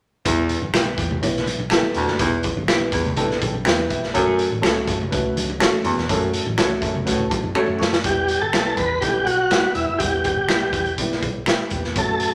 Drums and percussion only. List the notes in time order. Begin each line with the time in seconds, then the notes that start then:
0.26 kick, closed hi-hat, muted conga
0.49 closed hi-hat, muted conga
0.62 high conga
0.74 finger snap, snare, closed hi-hat
0.85 high conga
0.98 kick, closed hi-hat, muted conga
1.11 low conga
1.23 kick, closed hi-hat, muted conga, low conga
1.37 snare
1.47 closed hi-hat, high conga
1.60 high conga
1.70 finger snap, snare, closed hi-hat
1.83 high conga
1.94 closed hi-hat
2.07 snare
2.19 kick, closed hi-hat
2.43 kick, closed hi-hat, muted conga
2.57 high conga
2.68 finger snap, snare, closed hi-hat
2.80 high conga
2.92 kick, closed hi-hat
3.04 closed hi-hat, low conga
3.17 kick, closed hi-hat, low conga
3.31 snare
3.42 kick, closed hi-hat, high conga
3.54 high conga
3.65 finger snap, snare, closed hi-hat
3.78 high conga
3.90 kick, closed hi-hat
4.03 snare
4.15 kick, closed hi-hat, muted conga
4.39 closed hi-hat
4.52 high conga
4.63 finger snap, snare, closed hi-hat, muted conga
4.76 high conga
4.87 kick, closed hi-hat, muted conga
5.02 low conga
5.12 kick, closed hi-hat, muted conga, low conga
5.37 closed hi-hat, muted conga, high conga
5.50 high conga
5.60 finger snap, snare, closed hi-hat, muted conga
5.73 high conga
5.85 closed hi-hat, muted conga
5.98 snare
6.09 kick, closed hi-hat, muted conga
6.34 closed hi-hat, muted conga
6.46 high conga
6.58 finger snap, snare, closed hi-hat
6.70 high conga
6.82 kick, closed hi-hat, muted conga
6.95 low conga
7.07 kick, closed hi-hat, muted conga, low conga
7.31 kick, closed hi-hat, high conga
7.43 high conga
7.55 finger snap, muted conga
7.67 high conga
7.78 snare, muted conga
7.93 snare
8.04 kick, closed hi-hat
8.28 closed hi-hat
8.53 finger snap, snare, closed hi-hat
8.77 kick, closed hi-hat
9.02 kick, closed hi-hat
9.27 closed hi-hat
9.51 finger snap, snare, closed hi-hat
9.75 closed hi-hat
10.00 kick, closed hi-hat
10.24 kick, closed hi-hat
10.49 finger snap, snare, closed hi-hat
10.73 kick, closed hi-hat
10.86 closed hi-hat
10.98 kick, closed hi-hat
11.12 snare
11.23 kick, closed hi-hat
11.46 finger snap, snare, closed hi-hat
11.70 kick, closed hi-hat
11.84 snare
11.96 kick, closed hi-hat
12.20 closed hi-hat